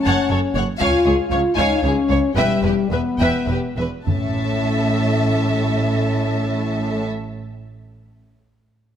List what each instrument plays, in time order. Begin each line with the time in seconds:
Already playing: french horn section C#4
0.04 double bass section F#1, cello section F#2, viola section C#5, violin section F#5 A5
0.30 double bass section F#1, cello section F#2, violin section A4 C#5, viola section C#5
0.55 double bass section F#1, cello section F#2, viola section C#5, violin section C#5 F#5
0.80 double bass section C#2, cello section C#2, french horn section F4, viola section C#5, violin section F5 G#5, taiko
1.05 double bass section C#2, cello section C#2, violin section G#4 C#5, viola section C#5
1.31 double bass section C#2, cello section C#2, violin section C#5 F5, viola section C#5
1.55 double bass section C#2, cello section C#2, french horn section D#4, viola section C#5, violin section F5 G#5, taiko
1.82 double bass section C#2, cello section C#2, french horn section C#4, violin section C#5, viola section C#5
1.86 violin section G#4
2.08 double bass section C#2, cello section C#2, viola section C#5, violin section C#5 F5
2.34 double bass section E1, cello section E2, french horn section G3, viola section B4, violin section E5 G5
2.62 double bass section E1, cello section E2, violin section G4 B4, viola section B4
2.89 double bass section E1, cello section E2, french horn section B3, violin section B4 E5, viola section B4
3.18 double bass section E1, cello section E2, viola section B4, violin section E5 G5
3.48 double bass section E1, cello section E2, violin section G4 B4, viola section B4
3.77 double bass section E1, cello section E2, viola section B4, violin section B4 E5
4.06 double bass section A1, cello section A2, french horn section C#4, viola section A4, violin section E5 A5, taiko low